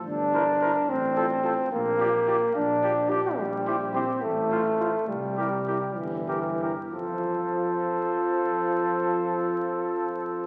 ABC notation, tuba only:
X:1
M:6/8
L:1/8
Q:3/8=69
K:F
V:1 name="Tuba" clef=bass
G,,,3 A,,,3 | B,,,3 B,,,3 | B,,,3 A,,,3 | C,,3 G,,,3 |
F,,6- | F,,6 |]